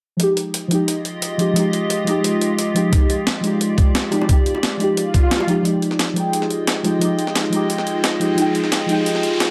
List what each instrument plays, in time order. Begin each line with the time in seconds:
0.17 synth stab F3 G#3, ambient pad G#3 F4 G4 D#5, closed hi-hat
0.21 synth stab D#4 G4
0.37 closed hi-hat
0.54 closed hi-hat
0.68 synth stab F3 G#3, closed hi-hat
0.72 synth stab D#4 G4
0.88 closed hi-hat
1.05 closed hi-hat
1.22 closed hi-hat
1.38 synth stab F3 G#3 D#4 G4, closed hi-hat
1.53 synth stab F3 G#3, closed hi-hat
1.57 synth stab D#4 G4
1.73 closed hi-hat
1.90 closed hi-hat
2.04 synth stab F3 G#3, closed hi-hat
2.08 synth stab D#4 G4
2.24 closed hi-hat
2.41 closed hi-hat
2.59 closed hi-hat
2.74 synth stab F3 G#3 D#4 G4, closed hi-hat
2.89 synth stab F3 G#3, ambient pad D5, kick, closed hi-hat
2.94 synth stab D#4 G4
3.10 closed hi-hat
3.27 snare, closed hi-hat
3.40 synth stab F3 G#3, closed hi-hat
3.45 synth stab D#4 G4
3.61 closed hi-hat
3.78 kick, closed hi-hat
3.95 snare, closed hi-hat
4.10 synth stab F3 G#3 D#4 G4, closed hi-hat, high bongo
4.21 high bongo
4.26 synth stab F3 G#3, kick, closed hi-hat
4.30 synth stab D#4 G4
4.46 closed hi-hat
4.55 high bongo
4.63 snare, closed hi-hat
4.77 synth stab F3 G#3, closed hi-hat
4.81 synth stab D#4 G4
4.97 closed hi-hat, swell
5.14 kick, closed hi-hat
5.31 snare, closed hi-hat
5.40 high bongo
5.47 synth stab F3 G#3 D#4 G4, closed hi-hat
5.62 synth stab F3 G#3, ambient pad G#3 F4 D#5 G5, vibraphone D#4, closed hi-hat, riser
5.66 synth stab D#4 G4
5.82 vibraphone D#4, closed hi-hat
5.91 snare
5.99 vibraphone G4, snare, closed hi-hat
6.08 snare
6.13 synth stab F3 G#3, vibraphone G#4, closed hi-hat
6.17 synth stab D#4 G5
6.33 vibraphone D#4, closed hi-hat
6.42 snare
6.50 vibraphone F4, closed hi-hat
6.67 vibraphone D#5, snare, closed hi-hat
6.83 synth stab F3 G#3 D#4 G4, vibraphone D#4, closed hi-hat
6.98 synth stab F3 G#3, vibraphone D#4, closed hi-hat
7.03 synth stab D#4 G4
7.19 vibraphone D#4, closed hi-hat
7.27 snare
7.35 vibraphone D#4, snare, closed hi-hat
7.44 snare
7.50 synth stab F3 G#3, vibraphone D#4, closed hi-hat
7.54 synth stab D#4 G4
7.70 vibraphone D#4, closed hi-hat
7.78 snare
7.87 vibraphone F4, closed hi-hat
8.04 vibraphone D#5, snare, closed hi-hat
8.19 synth stab F3 G#3 D#4 G4, vibraphone G#4, closed hi-hat
8.35 synth stab F3 G#3, vibraphone D#4, closed hi-hat
8.39 synth stab D#4 G5
8.55 vibraphone D#4, closed hi-hat
8.64 snare
8.72 vibraphone G4, snare, closed hi-hat
8.81 snare
8.86 synth stab F3 G#3, vibraphone G#4, closed hi-hat
8.90 synth stab D#4 G5
9.06 vibraphone D#4, closed hi-hat
9.15 snare
9.23 vibraphone F4, closed hi-hat
9.40 vibraphone D#5, snare, closed hi-hat